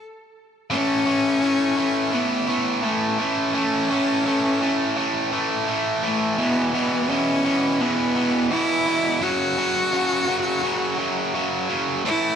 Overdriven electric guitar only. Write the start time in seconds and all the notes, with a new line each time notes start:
0.70 A2 E3 A3
1.06 A2 E3 A3
1.41 A2 E3 A3
1.77 A2 E3 A3
2.12 A2 E3 A3
2.47 A2 E3 A3
2.82 A2 E3 A3
3.19 A2 E3 A3
3.54 A2 E3 A3
3.90 A2 E3 A3
4.25 A2 E3 A3
4.61 A2 E3 A3
4.96 A2 E3 A3
5.32 A2 E3 A3
5.67 A2 E3 A3
6.03 A2 E3 A3
6.38 E2 B2 E3
6.74 E2 B2 E3
7.09 E2 B2 E3
7.45 E2 B2 E3
7.80 E2 B2 E3
8.15 E2 B2 E3
8.51 E2 B2 E3
8.86 E2 B2 E3
9.21 F#2 C#3 F#3
9.57 F#2 C#3 F#3
9.92 F#2 C#3 F#3
10.28 F#2 C#3 F#3
10.63 F#2 C#3 F#3
10.98 F#2 C#3 F#3
11.34 F#2 C#3 F#3
11.69 F#2 C#3 F#3
12.05 A2 E3 A3